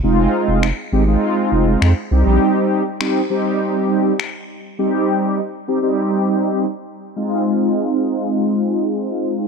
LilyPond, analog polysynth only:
\new Staff \with { instrumentName = "Analog polysynth" } { \time 4/4 \key f \minor \tempo 4 = 101 <aes c' ees' f'>4 r8 <aes c' ees' g'>16 <aes c' ees' f'>4. r16 <g c' ees' g'>8~ | <g c' ees' g'>8. r16 <g c' ees' g'>16 r16 <g c' ees' g'>4. r4 | <g c' ees' g'>4 r8 <g c' ees' g'>16 <g c' ees' g'>4. r8. | <aes c' ees' f'>1 | }